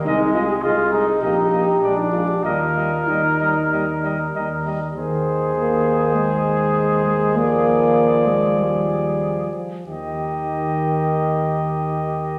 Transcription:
X:1
M:4/4
L:1/16
Q:1/4=96
K:Eb
V:1 name="Trumpet"
e2 e2 e2 e2 e2 e2 d2 d2 | e2 e2 e2 e2 e2 e2 e2 e2 | c16 | d12- d2 z2 |
e16 |]
V:2 name="Trumpet"
A,4 F2 E6 D4 | B12- B2 z2 | A16- | A12- A2 z2 |
G16 |]
V:3 name="French horn"
E2 F G A4 G4- G E F G | F4 E8 z4 | E,4 B,4 A,6 A,2 | B,6 A,2 G,6 F,2 |
E,16 |]
V:4 name="Trombone" clef=bass
A,2 A,2 A,2 A,2 B,2 B,2 A,2 A,2 | G,2 G,2 G,2 G,2 G,2 G,2 G,2 G,2 | E,16 | F,12- F,2 z2 |
E,16 |]
V:5 name="Tuba" clef=bass
C,,4 C,,4 B,,,4 B,,,4 | E,,4 E,,4 E,,4 E,,4 | E,,16- | E,,12- E,,2 z2 |
E,,16 |]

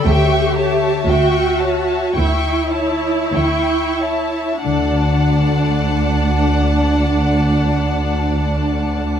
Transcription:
X:1
M:4/4
L:1/8
Q:1/4=52
K:D
V:1 name="Violin section"
c' a c' a c' a c' a | a8 |]
V:2 name="Violin section"
[eg] [ce] [eg] [ce] [eg] [ce] [eg] [ce] | [df]8 |]
V:3 name="Viola section"
G2 F2 E4 | D8 |]
V:4 name="Harp"
z8 | [D,A,DFd]8 |]
V:5 name="Harp"
[D,A,CG]8- | [D,A,CG]8 |]
V:6 name="Cello section" clef=bass
D,,2 D,,2 D,,2 D,,2 | D,,8 |]
V:7 name="Double bass section" clef=bass
D,,2 D,,2 D,,2 D,,2 | D,,8 |]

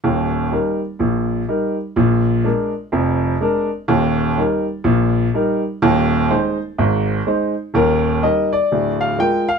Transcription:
X:1
M:4/4
L:1/8
Q:"Swing" 1/4=125
K:Eb
V:1 name="Grand piano"
z8 | z8 | z8 | z8 |
B2 e d2 f g f |]
V:2 name="Grand piano" clef=bass
[E,,,E,,]2 [G,EB]2 [B,,,B,,]2 [G,EB]2 | [B,,,B,,]2 [A,DB]2 [F,,,F,,]2 [A,DB]2 | [E,,,E,,]2 [G,EB]2 [B,,,B,,]2 [G,EB]2 | [E,,,E,,]2 [A,Ec]2 [A,,,A,,]2 [A,Ec]2 |
[E,,,E,,]2 [G,EB]2 [D,,,D,,]2 [A,FB]2 |]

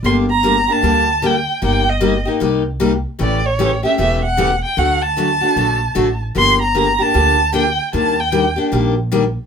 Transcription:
X:1
M:4/4
L:1/8
Q:"Swing" 1/4=152
K:Gm
V:1 name="Violin"
c' b2 a3 g2 | g e2 z4 z | d ^c2 =e e ^f2 g | ^f a6 z |
c' b2 a3 g2 | a g2 z4 z |]
V:2 name="Steel-string acoustic guitar"
[D,G,B,DG] z [D,G,B,DG] [B,DG] [D,G,B,DG] z [D,G,B,DG] z | [C,G,B,EG] z [C,G,B,EG] [B,EG] [C,G,B,EG] z [C,G,B,EG] z | [^C,=E,A,^CG] z [C,E,A,CG] [A,CG] [C,E,A,CG] z [C,E,A,CG] z | [D,^F,A,D^F] z [D,F,A,DF] [A,DF] [D,F,A,DF] z [D,F,A,DF] z |
[D,F,B,DG] z [D,F,B,DG] [B,DG] [D,F,B,DG] z [D,F,B,DG] z | [E,G,B,DG] z [E,G,B,DG] [B,DG] [E,G,B,DG] z [E,G,B,DG] z |]
V:3 name="Upright bass" clef=bass
G,,,4 D,,4 | G,,,4 C,,4 | A,,,4 =E,,,4 | D,,4 B,,,2 A,,,2 |
G,,,4 D,,4 | E,,4 B,,,4 |]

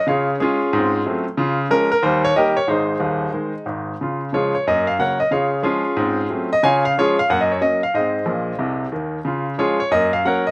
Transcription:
X:1
M:4/4
L:1/8
Q:"Swing" 1/4=182
K:Db
V:1 name="Grand piano"
[Adf]2 [DFA]4- [DFA] z | z2 B B c d [=GBe] d | [EAc]6 z2 | z2 [FAd] d e f [Bdg] e |
[Adf]2 [DFA]4- [DFA] e | [dfa] f [FAd] f (3g e d e f | [Ace]6 z2 | z2 [FAd] d e f [Bdg] e |]
V:2 name="Grand piano" clef=bass
[D,F]2 A,2 [A,,C]2 [G,=A,C]2 | [D,F]2 [F,A,D]2 [E,,=G,]2 [E,G,B,]2 | [A,,,A,,]2 [E,,,E,,]2 [E,A,]2 [A,,,A,,]2 | [D,F]2 [D,F,A,]2 [G,,B,]2 [D,G,B,]2 |
[D,F]2 [F,A,]2 [A,,C]2 [G,=A,C]2 | [D,F]2 [F,A,D]2 [G,,B,]2 [G,B,D]2 | [A,,C]2 [B,,,B,,]2 [C,,C,]2 [E,,E,]2 | [D,F]2 [F,A,D]2 [G,,B,]2 [G,B,D]2 |]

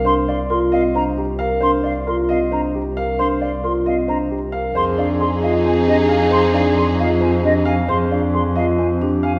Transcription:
X:1
M:7/8
L:1/8
Q:1/4=134
K:Cm
V:1 name="Flute"
c' f c' f b z2 | c' f c' f b z2 | c' f c' f b z2 | [K:Fdor] c' f c' f a e a |
c' f c' f a e a | c' f c' f a z a |]
V:2 name="Grand piano"
c d B e c G f | c d B e c G f | c d B e c G f | [K:Fdor] c d A e c G f |
c d A e c G f | c d A e c G f |]
V:3 name="Clarinet"
z6 z | z6 z | z6 z | [K:Fdor] A6- A- |
A6 z | z6 z |]
V:4 name="Violin section"
z6 z | z6 z | z6 z | [K:Fdor] [EA]6- [EA]- |
[EA]6 z | z6 z |]
V:5 name="Vibraphone"
D z F C D z B | D z F C D z B | D z F C D z B | [K:Fdor] A D z F C D z |
A D z F C D z | A D z F C D z |]
V:6 name="Double bass" clef=bass
C,,6- C,,- | C,,6- C,,- | C,,6- C,, | [K:Fdor] F,,6- F,,- |
F,,6- F,,- | F,,6- F,, |]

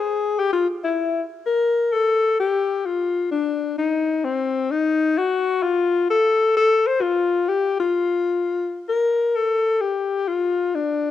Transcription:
X:1
M:4/4
L:1/8
Q:"Swing" 1/4=130
K:Fmix
V:1 name="Alto saxophone"
_A G F =E2 z B2 | A2 G2 F2 D2 | E2 C2 E2 _G2 | F2 A2 A c F2 |
G F4- F B2 | A2 G2 F2 D2 |]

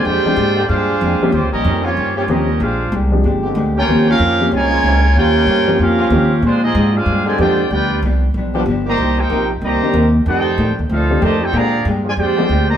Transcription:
X:1
M:4/4
L:1/8
Q:"Swing" 1/4=188
K:Bb
V:1 name="Trumpet section"
[Fcdg]4 [D_Acf]4 | [B,FGc] [_DGBe]2 [B,FG_d]2 [B,FGd] [DGBe]2 | [D_Acf]2 z4 z [FB_dg]- | [FB_dg] [_DGBf]3 [FBd_a]4 |
[FB_dg]4 [_DGBf]4 | [_A,DFc] [CF_Ae]2 [DAcf]2 [Fcd_a] [Fcdg]2 | [F=Bdg]2 z4 z [Gce_b]- | [Gceb] [EBcg]2 z [Gceb]3 z |
[EAcg]3 z [EAcf]2 [Gcea] [EAcg] | [_Adfb]2 z [Fcd_a] [Fcdg]3 [Gceb] |]
V:2 name="Hollow-body jazz guitar"
[B,,_A,DG] z [B,,A,DG] z [B,,A,DG] z [B,,A,DG] z | [E,_DGc] z [E,DGc] z [E,DGc] z [E,DGc] z | [B,,_A,DG] z [B,,A,DG] z [B,,A,DG] z [B,,A,DG] z | [E,_DGc] z [E,DGc] z [E,DGc] z [E,DGc] z |
[E,_DGc] z [E,DGc] z [E,DGc] z [E,DGc] z | [B,,_A,DG] z [B,,A,DG] z [B,,A,DG] z [B,,A,DG] z | [G,,F,=B,D] z [G,,F,B,D] z [G,,F,B,D] z [G,,F,B,D] z | [C,B,EG] z [C,B,EG] z [C,B,EG] z [C,B,EG] z |
[F,,E,A,D] z [F,,E,A,D] z [F,,E,A,D] z [F,,E,A,D] z | [B,,_A,DG] z [B,,A,DG] z [B,,A,DG] z [B,,A,DG] z |]
V:3 name="Grand piano"
z [F,_A,CDG] z4 z [F,B,C_DG] | z6 [F,B,C_DG] z | z3 [F,_A,CDG]3 z2 | [F,B,C_DG] z2 [F,B,CDG] z4 |
z3 [F,B,C_DG]3 [F,B,CDG] z | z6 [F,_A,CDG] z | z4 z [F,G,=B,DG] z2 | z4 z [E,B,CDG] z2 |
z4 z [E,A,CDG] z2 | z4 z [F,_A,CDG] z2 |]
V:4 name="Trombone section"
[D,_A,CG] z2 [D,A,CG] z4 | z3 [_D,G,CF] z [D,G,CG] z2 | z4 z [D,_A,CG]3 | z4 z [_D,F,_DF]3 |
[_D,G,_DF]3 z2 [D,G,CF] z2 | z4 z [D,_A,CG]3 | z4 z [F,=B,DG] z [E,_B,CG] | z2 [E,B,CG] z3 [E,B,CB] z |
[E,A,Gd]3 z3 [E,A,DG] z | [D,_A,CG] z4 [D,A,CG] z2 |]
V:5 name="Trombone section"
[_A,DG]4 [DF_A]4 | [_D,G,C] [G,B,E]2 [G,B,_D]2 [G,B,D] [G,B,E]2 | [_A,DF]2 z4 z [B,_DG]- | [B,_DG] [B,DF]3 [B,,_A,D]4 |
[B,_DG]4 [B,DF]4 | [F,_A,C] [F,A,E]2 [A,DF]2 [D,F,A,] [A,DG]2 | [=B,DG]2 z4 z [E,G,_B,]- | [E,G,B,] [B,EG]2 z [E,G,B,]3 z |
[CEG]3 z [A,CF]2 [C,E,A,] [CEG] | [D,F,B,]2 z [D,F,_A,] [A,DG]3 [E,G,B,] |]
V:6 name="Upright bass" clef=bass
F,, z _A,,2 G,,2 F,, z | (3E,, _D,, B,,, F,,2 G,,2 E,,2 | B,,,2 C,,2 G,,,2 D,,2 | E,,2 F,,2 C,,2 _D,,2 |
E,,2 G,,2 F,,2 E,,2 | B,,2 _A,,2 G,,2 F,,2 | D,,2 C,,2 =B,,,2 G,,,2 | C,,2 B,,,2 C,, z E,,2 |
F,,2 (3A,, F,, E,, D,,2 F,,2 | B,,2 G,,2 F,,2 D,,2 |]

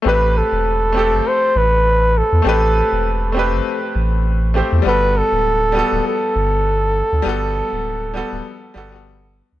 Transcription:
X:1
M:4/4
L:1/16
Q:"Swing 16ths" 1/4=100
K:Ador
V:1 name="Muted trumpet"
B2 A6 c2 B4 A2- | A6 z8 z2 | B2 A6 A8- | A12 z4 |]
V:2 name="Grand piano"
[A,CGB]6 [A,CGA]8- [A,CGA]2 | [A,CGB]6 [A,CGB]8 [A,CGc]2 | [G,B,FA]6 [G,B,FA]8- [G,B,FA]2 | [G,B,FA]6 [G,B,FA]4 [G,B,FA] [G,B,FA]4- [G,B,FA] |]
V:3 name="Sub bass" clef=bass
A,,,2 z E,,,4 G,,, z2 A,,,4 z E,, | A,,,2 z E,,,4 G,,, z2 A,,,4 z E,, | G,,,2 z D,,,3 z D,,, z2 G,,,4 z D,, | G,,,2 z D,,,3 z D,,, z2 G,,,4 z D,, |]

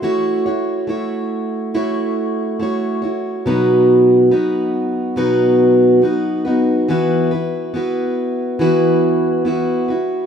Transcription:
X:1
M:4/4
L:1/8
Q:1/4=70
K:F#dor
V:1 name="Steel-string acoustic guitar"
[A,EFc] [EFc] [A,EFc]2 [A,EFc]2 [A,EFc] [EFc] | [B,,F,B,DFB]2 [B,DFB]2 [B,,F,B,DFB]2 [B,DFB] [B,DFB] | [E,B,EFB] [EFB] [B,EFB]2 [E,B,EFB]2 [B,EFB] [EFB] |]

